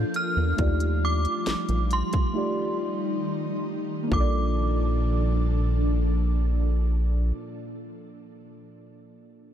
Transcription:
0.00 2.31 F3 medium
0.00 0.23 D4 medium
0.00 0.55 D4 medium
0.00 0.23 F4 medium
0.00 2.31 F4 medium
0.00 0.24 A4 medium
0.00 0.22 A#4 medium
0.00 0.24 F5 medium
0.00 0.19 G6 loud
0.14 1.06 F6 loud
0.14 closed hi-hat medium
0.37 0.54 E2 medium
0.56 1.27 D#2 loud
0.56 4.08 G3 medium
0.56 1.99 A3 medium
0.56 1.99 D#4 medium
0.56 2.00 F4 medium
0.56 2.00 G4 medium
0.56 kick loud
0.56 closed hi-hat medium
0.61 2.01 D5 medium
0.80 closed hi-hat medium
1.05 1.95 D6 loud
1.25 closed hi-hat medium
1.47 1.56 A#1 medium
1.47 snare loud
1.47 closed hi-hat medium
1.69 2.03 A#1 loud
1.69 closed hi-hat soft
1.91 3.64 C6 medium
1.91 closed hi-hat medium
2.13 kick loud
2.13 closed hi-hat medium
2.33 4.10 D#3 medium
2.33 3.75 A3 medium
2.33 3.76 D#4 medium
2.33 4.10 D#4 medium
2.33 3.76 F4 medium
2.33 3.77 G4 medium
2.37 3.77 D5 medium
4.03 7.24 A#3 medium
4.07 7.28 D4 medium
4.12 7.32 A#1 loud
4.12 7.32 A#2 medium
4.12 7.32 F3 medium
4.12 7.32 D4 medium
4.12 7.32 F4 medium
4.12 7.32 A4 medium
4.12 7.34 D6 medium
4.12 kick loud
4.16 7.36 A4 medium
4.20 7.41 D5 loud

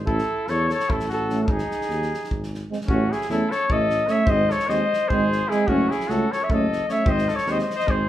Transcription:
0.06 0.19 A1 loud
0.06 0.48 E4 medium
0.06 0.51 A4 loud
0.06 kick medium
0.19 snare soft
0.47 0.72 E2 loud
0.47 0.68 A4 medium
0.47 0.72 C#5 medium
0.47 snare soft
0.69 0.91 A4 medium
0.69 snare soft
0.73 0.92 C#5 medium
0.80 snare soft
0.89 1.49 A1 medium
0.89 1.08 E4 medium
0.89 1.12 A4 medium
0.89 kick medium
1.00 snare soft
1.08 1.38 F#4 medium
1.08 snare soft
1.13 1.40 A4 medium
1.30 1.46 A3 medium
1.30 1.46 C#4 medium
1.30 snare soft
1.41 1.47 F#4 medium
1.41 1.52 A4 medium
1.46 1.60 G#1 loud
1.46 2.50 D#4 medium
1.46 kick loud
1.51 2.53 G#4 medium
1.58 snare soft
1.71 snare soft
1.81 snare soft
1.88 2.11 D#2 medium
1.88 snare soft
2.02 snare soft
2.14 snare soft
2.24 snare soft
2.31 2.62 G#1 medium
2.31 kick medium
2.43 snare soft
2.54 snare soft
2.70 2.78 G#3 medium
2.70 2.78 C4 soft
2.70 snare soft
2.81 snare soft
2.87 3.11 A1 loud
2.87 3.06 A3 medium
2.87 3.12 C#4 medium
2.87 3.05 C#4 medium
2.87 3.14 F#4 medium
2.87 kick medium
3.10 3.28 E4 medium
3.10 3.30 G#4 medium
3.10 snare soft
3.21 snare soft
3.29 3.41 E2 loud
3.29 3.46 A3 medium
3.29 3.46 C#4 medium
3.29 3.51 E4 medium
3.29 3.53 A4 medium
3.29 snare soft
3.50 3.68 A4 medium
3.50 3.73 C#5 medium
3.50 snare soft
3.68 4.01 A1 loud
3.68 3.86 A3 medium
3.68 3.86 C#4 medium
3.68 4.09 A4 medium
3.68 4.13 D#5 loud
3.68 kick medium
3.90 snare soft
4.07 4.25 A3 medium
4.07 4.26 C#4 medium
4.07 4.28 C#5 medium
4.07 snare soft
4.11 4.31 E5 loud
4.26 4.49 G#1 loud
4.26 4.45 G#3 medium
4.26 4.45 C4 medium
4.26 4.51 C5 medium
4.26 4.53 D#5 loud
4.26 kick loud
4.50 4.68 A4 medium
4.50 4.70 C#5 medium
4.50 snare soft
4.59 snare soft
4.66 4.81 D#2 medium
4.66 4.86 G#3 medium
4.66 4.85 C4 medium
4.66 5.10 C5 medium
4.66 5.10 D#5 loud
4.66 snare soft
4.93 snare soft
5.08 5.42 G#1 medium
5.08 5.26 G#3 medium
5.08 5.25 C4 medium
5.08 5.49 G#4 medium
5.08 5.51 C5 loud
5.08 kick medium
5.32 snare soft
5.48 5.66 G#3 medium
5.48 5.66 C4 medium
5.48 5.69 E4 medium
5.48 5.69 G#4 medium
5.48 snare soft
5.67 5.90 F#1 loud
5.67 5.85 A3 medium
5.67 5.90 C#4 medium
5.67 5.85 C#4 medium
5.67 5.93 F#4 loud
5.67 kick medium
5.89 6.09 E4 medium
5.89 6.12 G#4 medium
5.89 snare soft
6.00 snare soft
6.07 6.21 C#2 loud
6.07 6.25 A3 medium
6.07 6.26 C#4 medium
6.07 6.33 F#4 medium
6.07 6.33 A4 medium
6.07 snare soft
6.31 6.44 A4 medium
6.31 6.45 C#5 medium
6.31 snare soft
6.42 6.53 C#5 medium
6.42 6.54 E5 medium
6.50 6.81 F#1 medium
6.50 6.65 A3 medium
6.50 6.66 C#4 medium
6.50 6.89 A4 medium
6.50 6.90 D#5 loud
6.50 kick loud
6.72 snare soft
6.88 7.04 A3 medium
6.88 7.05 C#4 medium
6.88 7.08 C#5 medium
6.88 7.10 E5 medium
6.88 snare soft
7.05 7.28 G#1 loud
7.05 7.23 G#3 medium
7.05 7.22 C4 medium
7.05 7.30 C5 medium
7.05 7.37 D#5 medium
7.05 kick loud
7.18 snare soft
7.28 7.50 A4 medium
7.28 snare soft
7.35 7.53 C#5 medium
7.35 snare soft
7.46 7.59 D#2 medium
7.46 7.64 G#3 medium
7.46 7.64 C4 medium
7.46 7.60 C5 medium
7.46 snare soft
7.51 7.62 D#5 medium
7.59 7.74 C5 medium
7.59 7.76 D#5 medium
7.59 snare soft
7.70 snare soft
7.75 7.89 C5 medium
7.75 7.92 D#5 loud
7.80 snare soft
7.87 8.09 G#1 loud
7.87 8.03 G#3 medium
7.87 8.04 C4 medium
7.87 8.09 G#4 medium
7.87 8.09 C5 medium
7.87 kick medium

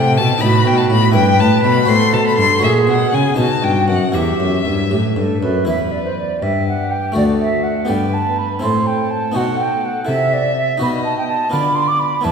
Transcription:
0.00 0.15 C3 medium
0.00 0.19 C3 medium
0.00 0.38 E4 soft
0.00 0.16 A4 medium
0.00 0.39 C5 medium
0.00 0.19 G5 loud
0.17 0.40 B2 medium
0.17 0.42 B2 medium
0.17 0.42 A5 medium
0.38 0.63 A2 medium
0.38 1.11 D#4 medium
0.38 1.12 B4 medium
0.38 0.68 B5 loud
0.43 0.66 A2 medium
0.43 1.15 F#4 medium
0.65 0.88 B2 medium
0.65 0.92 B2 medium
0.65 0.79 G5 loud
0.77 0.90 A5 medium
0.90 1.12 A2 medium
0.90 1.16 A2 medium
0.90 1.14 B5 loud
1.11 1.37 G2 medium
1.11 1.39 G2 medium
1.11 1.84 E4 medium
1.11 1.85 B4 medium
1.11 1.91 B4 medium
1.11 1.41 G5 medium
1.39 1.62 A2 medium
1.39 1.63 A2 medium
1.39 1.63 A5 medium
1.63 1.88 B2 medium
1.63 1.86 B2 medium
1.63 1.90 B5 medium
1.85 1.96 A2 medium
1.85 2.11 A2 medium
1.85 2.58 F#4 medium
1.85 2.63 A4 medium
1.85 2.59 C5 medium
1.85 2.15 C6 loud
2.13 2.35 B2 medium
2.13 2.21 B2 medium
2.13 2.26 A5 medium
2.27 2.37 B5 medium
2.38 2.60 G2 medium
2.38 2.46 G2 medium
2.38 2.62 C6 loud
2.59 2.85 A#2 medium
2.59 2.90 A#2 medium
2.59 3.33 F#4 medium
2.59 3.34 C#5 medium
2.63 3.37 G#4 medium
2.63 2.72 E5 medium
2.87 3.10 B2 medium
2.87 3.13 B2 medium
2.87 3.16 F#5 medium
3.13 3.35 C#3 medium
3.13 3.22 C#3 medium
3.13 3.38 G#5 medium
3.34 3.60 B2 medium
3.34 4.10 D#4 soft
3.34 4.16 F#4 medium
3.34 4.11 B4 soft
3.39 3.47 B2 medium
3.39 3.66 A5 medium
3.63 3.86 G2 soft
3.63 3.88 G2 medium
3.63 3.89 G5 medium
3.88 4.11 F#2 soft
3.88 3.97 F#2 medium
3.88 4.16 F#5 medium
4.12 4.39 E2 medium
4.12 4.38 E2 soft
4.12 5.63 E4 soft
4.12 4.59 G4 medium
4.12 5.64 B4 soft
4.12 5.43 E5 medium
4.40 4.63 F#2 soft
4.40 4.65 F#2 soft
4.65 4.89 G2 soft
4.65 4.91 G2 medium
4.90 5.14 A2 soft
4.90 5.16 A2 soft
4.90 4.96 G4 medium
5.16 5.40 G2 soft
5.16 5.25 G2 medium
5.16 5.42 A4 medium
5.41 5.66 F#2 medium
5.41 5.66 F#2 soft
5.41 5.67 B4 medium
5.65 6.38 E2 medium
5.65 6.39 E2 soft
5.65 7.11 E4 soft
5.65 7.12 B4 soft
5.65 6.39 B4 medium
5.65 5.93 E5 medium
5.92 6.04 D5 medium
6.05 6.17 C5 medium
6.18 6.44 D5 medium
6.42 7.12 G2 medium
6.42 7.12 G2 soft
6.42 7.18 G4 soft
6.42 6.67 E5 medium
6.68 6.92 F#5 medium
6.91 7.16 G5 medium
7.12 7.85 D2 medium
7.12 7.85 A3 soft
7.12 7.86 F#4 soft
7.12 7.87 D5 soft
7.16 7.86 D2 soft
7.16 7.89 A4 medium
7.16 7.23 D5 medium
7.40 7.65 E5 medium
7.64 7.91 F#5 medium
7.85 8.59 B3 soft
7.85 8.59 G4 soft
7.85 8.60 D5 soft
7.89 8.59 G2 medium
7.89 8.59 G2 soft
7.89 8.62 B4 medium
7.89 8.15 G5 medium
8.14 8.40 A5 medium
8.39 8.62 B5 medium
8.59 9.32 C4 soft
8.59 9.32 E4 soft
8.59 9.33 A4 soft
8.59 8.88 C6 medium
8.63 9.32 A2 medium
8.63 9.32 A2 soft
8.63 10.06 A4 medium
8.87 9.13 G5 medium
9.11 9.38 A5 medium
9.32 10.04 B3 soft
9.32 10.05 D#4 soft
9.32 10.06 F#4 soft
9.36 10.05 B2 medium
9.36 10.05 B2 soft
9.36 9.59 F#5 medium
9.60 9.87 G5 medium
9.85 10.08 F#5 medium
10.05 10.77 C3 medium
10.05 10.77 E4 soft
10.05 10.78 A4 soft
10.05 10.80 E5 medium
10.09 10.78 C3 soft
10.09 10.35 E5 medium
10.34 10.56 D5 medium
10.57 10.81 E5 medium
10.78 11.50 B2 medium
10.78 11.49 D#4 soft
10.78 11.50 F#4 soft
10.78 11.51 B4 soft
10.78 11.52 D#5 medium
10.82 11.50 B2 soft
10.82 10.88 B5 medium
11.05 11.17 A5 medium
11.18 11.28 G5 medium
11.28 11.51 A5 medium
11.50 12.21 D3 medium
11.50 12.20 B3 soft
11.50 12.22 F4 soft
11.50 12.23 B4 soft
11.50 11.77 B5 medium
11.54 12.22 D3 soft
11.54 12.24 D5 medium
11.76 11.90 C6 medium
11.88 12.01 D6 medium
11.99 12.26 B5 medium
12.21 12.32 B3 soft
12.21 12.32 E4 soft
12.21 12.32 B4 soft
12.21 12.32 A5 medium
12.25 12.32 E2 medium
12.25 12.32 B4 medium

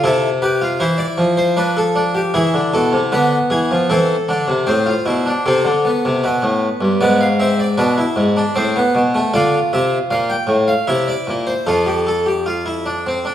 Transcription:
0.04 0.79 C3 medium
0.04 0.28 E4 medium
0.04 0.28 A4 medium
0.42 0.61 G4 medium
0.42 0.66 B4 medium
0.61 0.81 F4 medium
0.80 1.04 E3 medium
0.80 1.55 E4 medium
0.80 1.00 C5 medium
0.98 1.23 D5 medium
1.18 2.31 F3 medium
1.37 1.57 C5 loud
1.57 1.81 D4 medium
1.57 1.76 B4 loud
1.77 2.01 A4 medium
1.95 2.20 D4 medium
2.15 2.34 G4 medium
2.34 2.53 E3 medium
2.34 3.10 E4 medium
2.34 2.58 G#4 medium
2.54 2.73 D3 medium
2.73 2.93 B2 medium
2.73 2.98 A4 medium
2.93 3.12 C3 medium
3.12 3.37 D3 medium
3.12 3.88 B3 medium
3.12 3.37 B4 medium
3.50 3.70 E3 medium
3.50 3.75 G#4 medium
3.71 3.90 F3 medium
3.90 4.14 E3 medium
3.90 4.14 C4 medium
3.90 4.66 A4 medium
4.28 4.48 D3 medium
4.28 4.53 D4 medium
4.48 4.67 C3 medium
4.67 4.92 A2 medium
4.67 4.87 C4 medium
4.67 5.43 C5 medium
4.86 5.06 F4 soft
5.06 5.30 B2 medium
5.06 5.26 E4 medium
5.26 5.45 D4 medium
5.46 5.65 C3 medium
5.46 5.70 C4 medium
5.46 6.22 A4 medium
5.65 5.89 D3 medium
5.85 6.98 B3 medium
6.05 6.24 C3 medium
6.24 6.43 B2 medium
6.24 6.99 B4 medium
6.42 6.67 A2 medium
6.81 7.00 G2 medium
7.01 7.76 G#2 medium
7.01 7.25 B3 medium
7.01 7.20 D5 medium
7.21 7.40 F5 medium
7.40 7.64 C4 medium
7.40 7.59 E5 medium
7.59 7.78 D5 medium
7.77 8.02 B2 medium
7.77 7.97 D4 medium
7.77 8.53 B4 medium
7.98 8.22 E4 medium
8.16 8.41 G#2 medium
8.37 8.56 D4 medium
8.55 8.80 A2 medium
8.55 8.75 C4 medium
8.55 9.31 C5 medium
8.76 9.00 B3 medium
8.95 9.19 B2 medium
9.15 9.33 A3 medium
9.34 9.57 D3 medium
9.34 10.84 F4 medium
9.34 9.58 D5 medium
9.73 9.97 C3 medium
9.73 9.97 E5 medium
10.11 10.34 A#2 medium
10.11 10.29 F5 medium
10.30 10.53 G5 medium
10.47 10.72 A2 medium
10.68 10.87 F5 medium
10.87 11.12 C3 medium
10.87 11.64 E4 medium
10.87 11.07 E5 medium
11.08 11.32 D5 medium
11.27 11.52 A#2 medium
11.47 11.66 C5 medium
11.67 13.35 F2 medium
11.67 11.86 F4 medium
11.67 12.06 A4 medium
11.86 12.05 G4 medium
12.07 12.26 A4 medium
12.26 12.45 G4 medium
12.46 12.65 F4 medium
12.66 12.85 E4 medium
12.86 13.05 D4 medium
13.06 13.25 C4 medium
13.25 13.35 D4 medium

